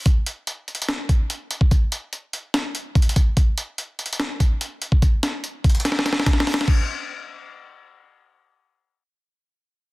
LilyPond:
\new DrumStaff \with { instrumentName = "Drums" } \drummode { \time 4/4 \tempo 4 = 145 <hh bd>8 hh8 \tuplet 3/2 { hh16 r16 r16 hh16 hh16 hh16 } <hh sn>8 <hh bd>8 hh8 hh16 bd16 | <hh bd>8 hh8 hh8 hh8 <hh sn>8 hh8 \tuplet 3/2 { <hh bd>16 hh16 hh16 <hh bd>16 r16 r16 } | <hh bd>8 hh8 \tuplet 3/2 { hh16 r16 r16 hh16 hh16 hh16 } sn8 <hh bd>8 hh8 hh16 bd16 | <hh bd>8 <hh sn>8 hh8 <hh bd>32 hh32 hh32 hh32 \tuplet 3/2 { <hh sn>16 sn16 sn16 <hh sn>16 sn16 sn16 <hh bd sn>16 sn16 sn16 <hho sn>16 sn16 sn16 } |
<cymc bd>4 r4 r4 r4 | r4 r4 r4 r4 | }